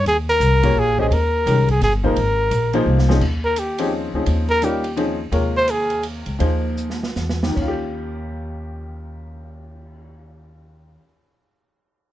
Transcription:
0.05 0.40 D#2 medium
0.05 0.17 G#4 medium
0.05 ride medium
0.29 0.81 A#4 medium
0.40 0.75 C2 medium
0.40 hi-hat pedal medium
0.40 ride medium
0.63 0.96 A#3 medium
0.63 0.96 F4 medium
0.63 0.96 G4 medium
0.63 0.97 G#4 medium
0.63 0.97 C#5 medium
0.63 kick medium
0.63 ride medium
0.76 1.10 A#1 medium
0.76 1.00 G#4 medium
0.99 1.10 G#3 medium
0.99 1.10 C#4 medium
0.99 1.10 G4 medium
0.99 1.07 G#4 medium
0.99 1.11 C5 medium
0.99 1.11 D#5 medium
0.99 kick medium
1.09 1.45 D#2 medium
1.09 1.15 G#4 medium
1.09 ride medium
1.13 1.70 A#4 medium
1.46 1.80 C2 medium
1.46 1.66 D#3 medium
1.46 1.66 G#3 medium
1.46 1.66 C#4 medium
1.46 1.67 G4 medium
1.46 1.67 A#4 medium
1.46 hi-hat pedal medium
1.46 ride medium
1.68 1.82 G#4 medium
1.68 kick soft
1.68 ride soft
1.81 2.15 G1 medium
1.81 1.93 G#4 medium
1.81 snare soft
1.81 ride medium
2.03 2.15 F3 medium
2.03 2.15 A#3 medium
2.03 2.16 D#4 medium
2.03 2.16 G#4 medium
2.03 2.84 A#4 medium
2.03 2.16 C5 medium
2.03 kick medium
2.16 2.50 G#1 medium
2.16 ride medium
2.51 2.85 A#1 medium
2.51 hi-hat pedal medium
2.51 ride medium
2.73 3.07 F3 medium
2.73 3.07 A#3 medium
2.73 3.07 D#4 medium
2.73 3.07 G#4 medium
2.73 3.07 C5 medium
2.73 ride soft
2.86 3.20 C2 medium
2.98 snare medium
3.08 3.20 F3 medium
3.08 3.21 C4 medium
3.08 3.21 C#4 medium
3.08 3.21 D#4 medium
3.08 3.21 G#4 medium
3.08 snare medium
3.21 4.09 D#2 medium
3.21 kick medium
3.21 crash medium
3.44 3.60 A#4 medium
3.56 3.93 G4 medium
3.56 hi-hat pedal medium
3.56 ride medium
3.78 4.12 F3 medium
3.78 4.12 C4 medium
3.78 4.12 C#4 medium
3.78 4.12 D#4 medium
3.78 4.12 G#4 medium
3.78 ride medium
4.13 4.26 D2 medium
4.13 4.60 F3 medium
4.13 4.60 C4 medium
4.13 4.60 C#4 medium
4.13 4.60 D#4 medium
4.13 4.60 G#4 medium
4.26 5.28 D#2 medium
4.26 ride medium
4.50 4.66 A#4 medium
4.62 4.82 G3 medium
4.62 4.82 C#4 medium
4.62 4.83 D#4 medium
4.62 4.82 F4 medium
4.62 4.98 G4 medium
4.62 4.83 A#4 medium
4.62 hi-hat pedal medium
4.62 ride medium
4.84 ride soft
4.97 5.17 F3 medium
4.97 5.17 C4 medium
4.97 5.17 C#4 medium
4.97 5.17 D#4 medium
4.97 5.17 G#4 medium
4.97 ride medium
5.32 6.22 D#2 medium
5.32 6.31 C3 medium
5.32 6.31 G#3 medium
5.32 6.31 F4 medium
5.32 6.31 A#4 medium
5.32 6.32 C#5 medium
5.32 ride medium
5.57 5.72 C5 loud
5.68 6.05 G#4 medium
5.68 hi-hat pedal medium
5.68 ride medium
5.90 ride soft
6.03 ride medium
6.26 6.39 C#2 medium
6.26 ride soft
6.39 7.12 D#2 medium
6.39 6.96 F3 medium
6.39 6.96 A#3 medium
6.39 6.96 D#4 medium
6.39 6.96 G#4 medium
6.39 6.97 C5 medium
6.39 ride medium
6.77 hi-hat pedal medium
6.90 snare soft
7.03 snare medium
7.16 7.54 E2 medium
7.16 snare medium
7.16 hi-hat pedal medium
7.30 snare medium
7.43 10.87 D#2 medium
7.43 snare medium
7.49 10.93 D#3 medium
7.55 10.96 D#2 medium
7.55 10.99 C#4 medium
7.55 kick medium
7.55 crash medium
7.62 11.05 F4 medium
7.68 11.12 G4 medium
7.83 cymbal swell soft

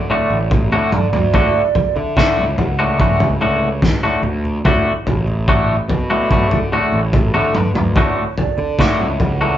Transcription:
0.02 0.10 C#5 medium
0.09 0.37 A2 medium
0.09 0.37 D3 medium
0.09 0.37 A3 medium
0.09 0.37 F#4 medium
0.09 0.51 D5 medium
0.09 low conga medium
0.30 0.73 A1 medium
0.51 0.93 C#5 medium
0.51 muted clean electric guitar stroke soft
0.51 kick loud
0.51 floor tom medium
0.72 0.91 A2 medium
0.72 1.07 D3 medium
0.72 0.92 D3 medium
0.72 0.92 A3 medium
0.72 0.92 F#4 medium
0.72 high conga medium
0.92 1.97 D5 loud
0.92 muted clean electric guitar stroke soft
0.92 mid tom medium
0.92 low conga medium
1.13 1.48 D2 medium
1.13 mid tom medium
1.13 high conga medium
1.34 1.61 A2 medium
1.34 1.61 D3 medium
1.34 1.61 A3 medium
1.34 1.61 F#4 medium
1.34 kick loud
1.34 floor tom medium
1.75 floor tom medium
1.75 low conga medium
1.96 2.39 D3 medium
1.96 2.58 E5 loud
1.96 high conga medium
2.17 2.44 A2 medium
2.17 2.44 D3 medium
2.17 2.44 A3 medium
2.17 2.44 F#4 medium
2.17 kick loud
2.17 snare medium
2.37 2.55 C#2 medium
2.57 3.97 C#2 medium
2.57 3.00 F#5 loud
2.57 floor tom medium
2.57 low conga medium
2.79 2.99 A2 medium
2.79 2.99 D3 medium
2.79 3.00 A3 medium
2.79 3.00 F#4 medium
2.98 3.27 A2 medium
2.98 3.27 D3 medium
2.98 3.27 A3 medium
2.98 3.27 F#4 medium
2.98 3.40 G#5 loud
2.98 kick loud
2.98 mid tom medium
3.20 floor tom medium
3.20 high conga medium
3.41 3.68 A2 medium
3.41 3.68 D3 medium
3.41 3.68 A3 medium
3.41 3.68 F#4 medium
3.41 low conga medium
3.82 muted clean electric guitar stroke soft
3.82 kick loud
3.82 snare medium
3.82 floor tom medium
4.03 4.23 A2 medium
4.03 4.23 D3 medium
4.03 4.24 A3 medium
4.03 4.24 F#4 medium
4.03 high conga medium
4.23 4.58 D2 medium
4.23 muted clean electric guitar stroke soft
4.23 low conga medium
4.45 high conga medium
4.65 4.82 D2 loud
4.65 4.92 A2 medium
4.65 4.92 D3 medium
4.65 4.92 A3 loud
4.65 4.92 F#4 loud
4.65 kick medium
4.65 floor tom medium
5.07 5.76 A1 medium
5.07 floor tom medium
5.27 high conga medium
5.48 5.75 A2 medium
5.48 5.75 D3 medium
5.48 5.75 A3 loud
5.48 5.75 F#4 medium
5.48 kick loud
5.88 6.51 B2 medium
5.88 floor tom medium
5.88 low conga medium
6.10 6.30 A2 medium
6.10 6.30 D3 medium
6.10 6.31 A3 medium
6.10 6.31 F#4 medium
6.31 6.57 A2 medium
6.31 6.58 D3 medium
6.31 6.58 A3 medium
6.31 6.58 F#4 medium
6.31 kick loud
6.31 mid tom medium
6.51 6.69 D3 medium
6.51 floor tom medium
6.51 high conga medium
6.71 6.99 A2 medium
6.71 6.99 D3 medium
6.71 6.99 A3 medium
6.71 6.99 F#4 loud
6.71 7.10 G#4 medium
6.71 low conga medium
6.92 7.35 A1 loud
7.13 7.52 A4 medium
7.13 muted clean electric guitar stroke soft
7.13 kick loud
7.13 floor tom medium
7.34 7.54 A2 medium
7.34 7.69 D3 medium
7.34 7.55 D3 medium
7.34 7.55 A3 medium
7.34 7.54 F#4 medium
7.34 high conga medium
7.55 7.96 B4 medium
7.55 muted clean electric guitar stroke soft
7.55 mid tom medium
7.55 low conga medium
7.75 8.10 D2 medium
7.75 mid tom medium
7.75 high conga medium
7.96 8.23 A2 medium
7.96 8.23 D3 medium
7.96 8.23 A3 medium
7.96 8.23 F#4 medium
7.96 8.37 C#5 medium
7.96 kick loud
7.96 floor tom medium
8.37 8.76 D5 medium
8.37 floor tom medium
8.37 low conga medium
8.58 9.01 D3 medium
8.58 high conga medium
8.79 9.06 A2 medium
8.79 9.06 D3 medium
8.79 9.06 A3 medium
8.79 9.06 F#4 medium
8.79 9.21 E5 medium
8.79 kick loud
8.79 snare medium
9.00 9.17 C#2 medium
9.20 9.58 C#2 medium
9.20 9.58 F#5 loud
9.20 floor tom medium
9.20 high conga medium
9.20 low conga medium
9.41 9.58 A2 medium
9.41 9.58 D3 medium
9.41 9.58 A3 medium
9.41 9.58 F#4 medium

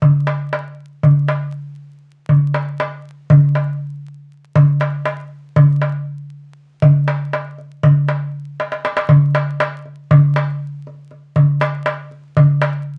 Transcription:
0.02 darbuka dum medium
0.27 darbuka tek medium
0.53 darbuka tek medium
1.03 darbuka dum medium
1.28 darbuka tek medium
2.29 darbuka dum medium
2.54 darbuka tek medium
2.80 darbuka tek medium
3.30 darbuka dum medium
3.55 darbuka tek medium
4.55 darbuka dum medium
4.81 darbuka tek medium
5.05 darbuka tek medium
5.56 darbuka dum medium
5.82 darbuka tek medium
6.82 darbuka dum medium
7.08 darbuka tek medium
7.33 darbuka tek medium
7.58 darbuka ka soft
7.83 darbuka dum medium
8.08 darbuka tek medium
8.60 darbuka tek medium
8.72 darbuka ka medium
8.85 darbuka tek medium
8.97 darbuka ka medium
9.09 darbuka dum medium
9.35 darbuka tek medium
9.60 darbuka tek medium
9.86 darbuka ka soft
10.11 darbuka dum medium
10.36 darbuka tek medium
10.87 darbuka ka soft
11.11 darbuka ka soft
11.36 darbuka dum medium
11.61 darbuka tek medium
11.86 darbuka tek medium
12.11 darbuka ka soft
12.37 darbuka dum medium
12.62 darbuka tek medium

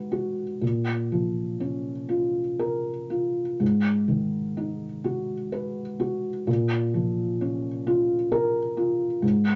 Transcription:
0.00 0.57 G#2 soft
0.00 0.64 D#3 soft
0.00 0.64 D#4 soft
0.00 0.12 F#4 soft
0.00 0.41 B4 medium
0.12 0.62 F#4 soft
0.61 3.57 A#2 soft
1.12 1.91 F3 soft
1.60 2.40 C#4 soft
2.09 2.90 F4 soft
2.59 3.41 A#4 soft
3.10 3.60 F4 soft
3.60 6.43 G#2 soft
4.08 4.86 D#3 soft
4.57 5.34 D#4 soft
5.04 5.81 F#4 soft
5.52 6.29 B4 soft
6.00 6.47 F#4 soft
6.47 9.18 A#2 soft
6.94 7.68 F3 soft
7.41 8.14 C#4 soft
7.87 8.59 F4 soft
8.32 9.04 A#4 medium
8.77 9.22 F4 soft
9.22 9.55 G#2 soft

